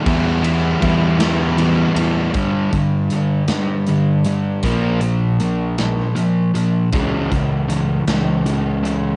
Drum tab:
RD |xxxxxx|------|------|------|
HH |------|xxxxxx|xxxxxx|xxxxxx|
SD |---o--|---o--|---o--|---o--|
BD |o-o---|oo----|o-----|oo----|